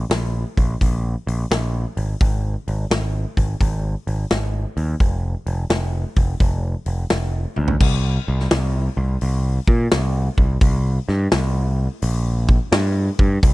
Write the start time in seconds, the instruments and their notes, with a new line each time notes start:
0.10 picked electric bass A#1, snare, open hi-hat
0.57 picked electric bass A#1, kick, open hi-hat
0.81 picked electric bass A#1, kick, open hi-hat
1.27 picked electric bass A#1, open hi-hat
1.51 picked electric bass A#1, snare, open hi-hat
1.97 picked electric bass G#1, open hi-hat
2.21 picked electric bass G#1, kick, open hi-hat
2.68 picked electric bass G#1, open hi-hat
2.91 picked electric bass G#1, snare, open hi-hat
3.37 picked electric bass G#1, kick, open hi-hat
3.61 picked electric bass G#1, kick, open hi-hat
4.07 picked electric bass G#1, open hi-hat
4.30 picked electric bass G#1, snare, open hi-hat
4.77 picked electric bass D#2, open hi-hat
5.00 picked electric bass F1, kick, open hi-hat
5.47 picked electric bass F1, open hi-hat
5.70 picked electric bass F1, snare, open hi-hat
6.16 picked electric bass F1, kick, open hi-hat
6.40 picked electric bass F1, kick, open hi-hat
6.86 picked electric bass F1, open hi-hat
7.10 picked electric bass F1, snare, open hi-hat
7.56 picked electric bass D2, high tom
7.68 floor tom
7.80 picked electric bass C2, kick, crash
8.28 picked electric bass C2
8.40 snare
8.51 picked electric bass C2, snare, open hi-hat
8.97 picked electric bass C2
9.21 picked electric bass C2, open hi-hat
9.67 picked electric bass A#2, kick
9.91 picked electric bass C2, snare, open hi-hat
10.38 picked electric bass C2, kick
10.61 picked electric bass C2, kick, open hi-hat
11.08 picked electric bass G2, snare
11.31 picked electric bass C2, snare, open hi-hat
12.02 picked electric bass A#1, open hi-hat
12.49 kick
12.72 picked electric bass G2, snare, open hi-hat
13.19 picked electric bass G2, kick
13.43 picked electric bass C2, kick, open hi-hat